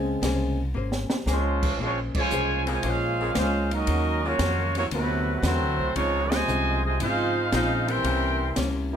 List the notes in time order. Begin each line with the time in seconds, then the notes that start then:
Already playing: C#2 C#3 G#3 C4 G#5
0.22 C2 A#3 C#4 G#4 C5, snare, hi-hat pedal, ride
0.74 G#1 A#3 C#4 G#4 C5
0.92 snare
1.10 muted upright bass stroke, snare
1.26 C#2 F3 G#3 A#3 C#4 G#4 C5, snare, hi-hat pedal
1.31 G#3 C#4 F4 C5
1.63 kick, crash
1.78 A#1 F3 G#3 A#3 C#4 G#4
1.83 G#3 C4 F4 C5 C#5
2.15 C#3 F3 G#3 F4 C5 C#5 G#5, kick, crash
2.31 C2 A#3 C#4 G#4 C5, hi-hat pedal
2.66 C#3 F3 G#3 A#3 C4 G#4, ride
2.71 F4 C5 C#5 G#5
2.83 A#1 G#3 A#3 C#4 F4 G#4 C5 F5, ride
3.20 C#3 A#3 C4 G#4
3.35 C#2 G#3 A#3 C#4 F4 G#4 C5 F5, snare, hi-hat pedal, ride
3.71 F#3 A#3 C#4 D#4 F#4 A#4 D#5, ride
3.87 D#2 D#3 G#3 C#4 F#4, ride
4.24 C#3 F#3 G#3 A#3 C#4 F4 F#4 C#5
4.39 F2 D#3 G#3 C#4 F#4, snare, hi-hat pedal, ride
4.75 C3 F#3 A#3 B3 C#4 E4 F4 F#4 C#5, ride
4.91 D2 C3 D3 F#3 A3 B3 C4 E4 F#4 B4, ride
5.42 E2 D3 F#3 A3 C4 E4 F#4 B4 C5, snare, hi-hat pedal, ride
5.60 D2
5.78 C2
5.95 C#2 C#3 F3 G#3 C4 C#4 D#4 F4 C#5, ride
6.31 C3 F3 G#3 F4 C5 D#5 G#5, snare, ride
6.48 C2 C#3 F3 C4 D#4, hi-hat pedal
6.82 C3 F3 G#3 F4 C5 D#5 G#5
6.99 G#1 C#3 F3 G#3 C4 D#4 F4 G#4 C5 F5, ride
7.03 D#4
7.51 A#1 C#3 F3 G#3 C4 D#4 F4 G#4 C5 F5, snare, hi-hat pedal, ride
7.87 E3 G3 C4 A#4 E5 G5 C6, ride
8.04 C2 C3 C#3 A#3 C4 C#4 E4, ride
8.56 C#2 C3 A#3 C#4 E4, snare, hi-hat pedal, ride
8.92 G3 A#3 E4